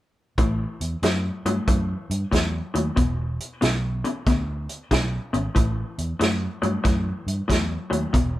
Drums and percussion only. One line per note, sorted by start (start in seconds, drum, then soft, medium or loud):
0.38 kick medium
0.38 closed hi-hat medium
0.81 closed hi-hat soft
1.03 snare medium
1.03 closed hi-hat medium
1.46 closed hi-hat soft
1.68 kick medium
1.68 closed hi-hat medium
2.11 closed hi-hat medium
2.32 kick medium
2.32 snare medium
2.32 closed hi-hat medium
2.75 closed hi-hat soft
2.97 kick medium
2.97 closed hi-hat medium
3.40 closed hi-hat soft
3.62 snare medium
3.62 closed hi-hat medium
4.05 closed hi-hat soft
4.27 kick medium
4.27 snare soft
4.27 closed hi-hat medium
4.69 closed hi-hat medium
4.91 kick medium
4.91 snare medium
4.91 closed hi-hat medium
5.34 closed hi-hat soft
5.56 kick medium
5.56 closed hi-hat medium
5.98 closed hi-hat soft
6.21 snare medium
6.21 closed hi-hat medium
6.63 closed hi-hat soft
6.85 kick medium
6.85 snare soft
6.85 closed hi-hat medium
7.28 closed hi-hat medium
7.50 kick medium
7.50 snare medium
7.50 closed hi-hat medium
7.93 closed hi-hat soft
8.14 kick loud
8.14 closed hi-hat medium